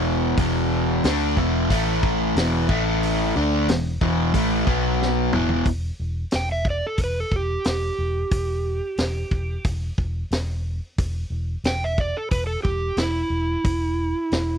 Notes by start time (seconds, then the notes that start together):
Already playing: E1 E2 B2 E3
0.37 E1 E2 B2 E3, kick, open hi-hat
1.04 D2 D3 A3 D4, snare, open hi-hat
1.37 E1 E2 B2 E3, kick
1.70 A1 A2 E3 A3, kick, open hi-hat
2.03 kick
2.35 E1 E2 B2 E3, snare, open hi-hat
2.69 A1 A2 E3 A3, kick
3.03 open hi-hat
3.36 D2 D3 A3 D4
3.68 E1 E2 B2, snare, open hi-hat
4.01 E1 E2 B2 E3, kick
4.33 A1 A2 E3 A3, kick, open hi-hat
4.66 B1 B2 F#3 B3, kick
5.02 snare
5.33 E1 E2 B2 E3, mid tom
5.49 floor tom
5.65 E1, kick, open hi-hat
6.00 E1
6.31 E1, snare, open hi-hat
6.36 G5
6.52 E5
6.65 kick
6.70 D5
6.87 A4
6.97 E1, kick, open hi-hat
7.04 B4
7.20 A4
7.31 E1, kick
7.36 G4
7.64 E1, snare, open hi-hat
7.69 G4
7.98 E1
8.31 E1, kick, open hi-hat
8.97 E1, snare, open hi-hat
9.31 E1, kick
9.64 E1, kick, open hi-hat
9.98 E1, kick
10.31 E1, snare, open hi-hat
10.98 E1, kick, open hi-hat
11.30 E1
11.64 E1 G5, snare, open hi-hat
11.84 E5
11.98 D5, kick
12.17 A4
12.31 E1 B4, kick, open hi-hat
12.47 A4
12.63 E1 G4, kick
12.97 E1 E4, snare, open hi-hat
13.30 E1
13.64 E1, kick, open hi-hat
14.31 E1, snare, open hi-hat